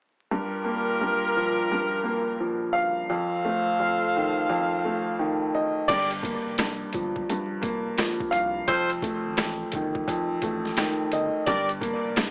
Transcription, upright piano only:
0.31 G2
0.65 A#3
1.01 G2
1.36 F3
1.72 G2
2.03 A#3
2.40 F3
2.73 F5
3.10 F2
3.45 A3
3.80 F2
4.16 D#3
4.49 F2
4.85 A3
5.19 D#3
5.55 D#5
5.90 G2
6.23 A#3
6.59 G2
6.95 F3
7.30 G2
7.62 A#3
7.98 F3
8.31 F5
8.68 F2
9.03 A3
9.38 F2
9.75 D#3
10.08 F2
10.43 A3
10.77 D#3
11.13 D#5
11.48 G2
11.81 A#3
12.18 G2

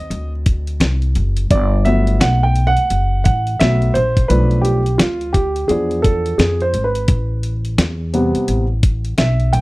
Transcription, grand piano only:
Already playing: F#3 C4 D#4 D#5
1.51 D5
1.85 F#3 A3 B3 E5
2.20 F#5
2.43 G5
2.67 F#5
3.24 F#5
3.60 F#3 A3 B3 E5
3.94 C5
4.28 F3 A3 D4 B4
4.62 G4
4.98 F4
5.33 G4
5.68 F3 B3 D4 G#4
6.02 A4
6.38 G#4
6.62 C5
6.84 B4
8.13 C3 G3 B3
9.18 E5
9.53 G5

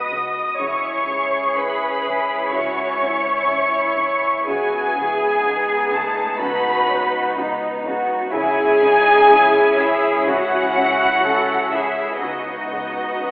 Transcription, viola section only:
Already playing: D#5
0.60 C#5
1.57 B4
2.53 C#5
4.47 G#4
5.92 A3
6.41 B4
8.34 G#4
9.80 E4
10.28 F#4
11.74 E4
12.21 D#4

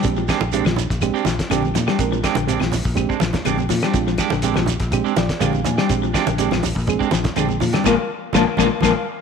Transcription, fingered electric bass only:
0.05 A#1
0.41 A#1
0.66 A#1
0.90 A#1
1.26 A#1
1.50 A#1
1.76 A#2
1.99 A#1
2.37 A#1
2.61 A#1
2.85 A#1
3.21 A#1
3.45 A#1
3.70 A#2
3.94 A#1
4.32 A#1
4.57 A#1
4.80 A#1
5.18 A#1
5.41 A#1
5.67 A#2
5.90 A#1
6.28 A#1
6.53 A#1
6.76 A#1
7.13 A#1
7.37 A#1
7.62 A#2
7.86 A#1
8.35 A#1
8.58 A#1
8.83 A#1

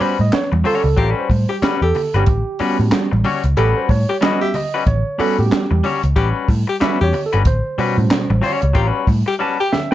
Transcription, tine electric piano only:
Already playing: G3 B3 C#4 F#4
0.01 C5
0.21 D#5
0.34 C#5
0.67 A4
1.19 C5
1.51 G4
1.83 A4
2.16 G4
2.60 G3 B3 C#4 F#4
3.57 A4
3.78 C5
3.90 C#5
4.21 G3 B3 C#4 F#4 D#5
4.42 E5
4.55 D#5
4.87 C#5
5.18 G3 B3 C#4 F#4 A4
5.39 G4
6.80 G3 B3 C#4 F#4 E5
7.04 C#5
7.26 A4
7.47 C5
7.78 B2 G3 C#4 F#4
8.46 C#5
9.41 A5
9.60 G5
9.73 E5
9.91 G5

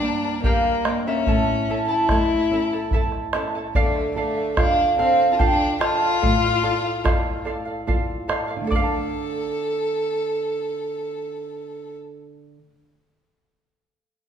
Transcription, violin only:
Already playing: D4
0.44 A#3
1.07 C#4
1.89 E4
3.76 A3
4.16 A3
4.58 D4
4.99 C4
5.33 F4
5.40 D4
5.82 F4
8.70 A4

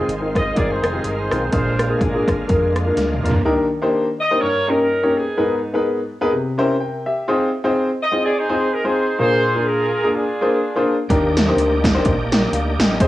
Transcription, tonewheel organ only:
Already playing: D#3 G#3 C4 F4
1.51 D3 A#3
11.09 A#3 D4 D#4 G4
13.00 D#3 G#3 C4 G4

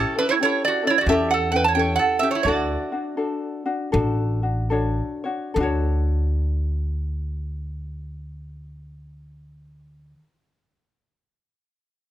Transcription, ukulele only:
Already playing: C#4 E4 G4 A4
0.16 C#4 E4 A4
0.40 C#4 E4 G4 A4
0.83 C#4 E4 A4
1.08 C#4 E4 G4 A4
1.51 C#4 E4 A4
1.75 C#4 E4 G4 A4
2.20 C#4 E4 A4
2.46 D4 F#4 A4
2.92 D4 F#4
3.17 D4 F#4 A4
3.66 D4 F#4
3.92 D4 F#4 A4
4.43 D4 F#4
4.70 D4 F#4 A4 C#5
5.24 D4 F#4 C#5
5.54 D4 A4
5.60 F#4 C#5

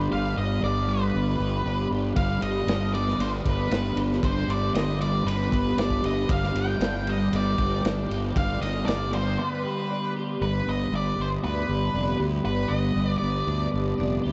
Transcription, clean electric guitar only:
Already playing: G3 B3 D4 G4
0.10 G2
0.61 D4
0.87 G3
1.14 B3
1.38 G4
1.66 D4
1.92 G4
2.17 G2
2.68 D4
2.95 G3
3.20 B3
3.46 G4
3.72 D4
3.98 G4
4.23 G2
4.75 D4
5.02 G3
5.27 B3
5.51 G4
5.77 D4
6.03 G4
6.29 G2
6.82 D4
7.06 G3
7.32 B3
7.59 G4
7.83 D4
8.09 G4
8.35 G2
8.86 D4
9.12 G3
9.39 B3
9.64 G4
9.90 D4
10.17 G4
10.43 G2
10.67 B3
10.92 G3
11.19 B3
11.43 D4
11.68 G3
11.94 D4
12.19 G4
12.45 G2
12.71 B3
12.96 G3
13.21 B3
13.48 D4
13.73 G3
13.98 D4
14.24 G4

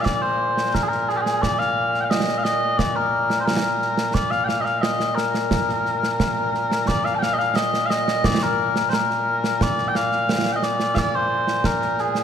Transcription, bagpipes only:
Already playing: A#2
0.01 D5 F5
0.22 C5
0.74 A#4
0.83 G#4
0.89 A#4
1.09 G#4
1.16 G4
1.21 G#4
1.42 D5
1.59 F5
2.01 F5 G5
2.10 D#5
2.38 F5
2.44 D#5
2.78 D5
2.96 A#4
3.40 C5
3.46 A#4
4.14 D5
4.31 F5
4.44 F5 G5
4.61 D#5 F5
4.76 F5
4.81 D#5
5.15 A#4
6.87 D5
7.05 F5
7.15 G5 A5
7.23 F5
7.33 D#5
7.38 F5
7.49 F5
7.56 D#5
7.86 F5
7.90 D#5
8.25 D5
8.43 A#4
8.90 C5
8.94 A#4
9.63 D5
9.88 G5
9.96 F5
10.52 D#5 G5
10.64 D5
10.95 D5 F5
11.15 C5
11.66 A#4
12.00 G#4

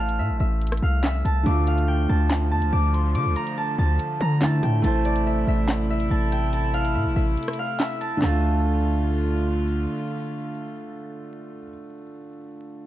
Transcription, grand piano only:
Already playing: A3 E4 C5
1.43 D3 A3
1.48 F4
4.41 D3 A3 E4
4.82 A3 E4
4.87 C5
8.17 D3
8.22 A3
8.27 F4

